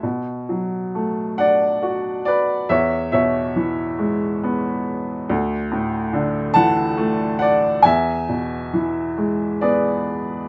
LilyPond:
<<
  \new Staff \with { instrumentName = "Upright piano" } { \time 3/4 \key b \dorian \tempo 4 = 69 r4. <d'' fis''>4 <b' d''>8 | <cis'' e''>8 <cis'' e''>2 r8 | r4. <fis'' a''>4 <d'' fis''>8 | <e'' gis''>2 <gis' b' d''>4 | }
  \new Staff \with { instrumentName = "Upright piano" } { \clef bass \time 3/4 \key b \dorian b,8 fis8 a8 d'8 fis'4 | e,8 b,8 e8 gis8 b4 | d,8 a,8 d8 e8 a4 | e,8 b,8 e8 gis8 b4 | }
>>